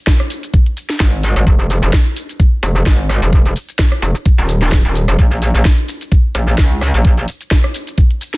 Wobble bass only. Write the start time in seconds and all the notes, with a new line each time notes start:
1.00 G#1
1.36 G#1
1.47 F1
1.83 F1
2.63 F1
2.86 G#1
3.22 F1
4.02 F1
4.38 D#1
4.85 D#1
5.08 F1
5.19 A#1
5.55 A#1
6.35 A#1
6.58 C#2
6.94 A#1